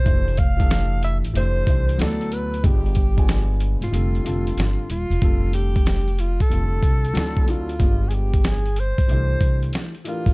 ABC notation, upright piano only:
X:1
M:4/4
L:1/16
Q:"Swing 16ths" 1/4=93
K:F
V:1 name="Upright piano"
[E,A,DGc]2 z [E,A,DGA]4 z [E,A,DGc]2 [E,A,DGc]2 [^F,=B,EAd]3 z | [_A,=B,DFG]2 z [A,B,DF_a]4 z [D,G,CF=A]2 [D,G,CFA]4 z2 | [D,G,CFA]4- [D,G,CFA] z3 [D,G,CFA]3 z [^F,CDEA]2 [F,CDEA] z | [_A,=B,DFG]4- [A,B,DFG] z3 [D,E,=A,DGc]4- [D,E,A,DGc] z [E,A,DG_B] z |]